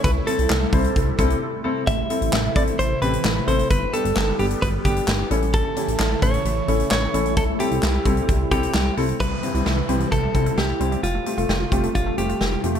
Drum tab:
HH |x-xx--oxx-xx----|x-xx--xxx-xx--xx|x-xx--oxx-xx--xx|x-xx--xxx-xx--xx|
CP |----x-----------|----x-------x---|----x-------x---|----x-------x---|
SD |----o-----------|----o-------o---|----o-------o---|----o-------o---|
BD |o-----o-o-o-----|o-----o---------|o-------o-o-----|o-----o---------|

HH |x-xx--xxx-xx--ox|x-xx--xxx-xx--xx|x-xx--xxx-xx--xx|
CP |----x-------x---|----------------|----------------|
SD |----o-------o---|----o-------o---|----o-------o---|
BD |o-----o-o-o-----|o-------o-o-----|------o-o-------|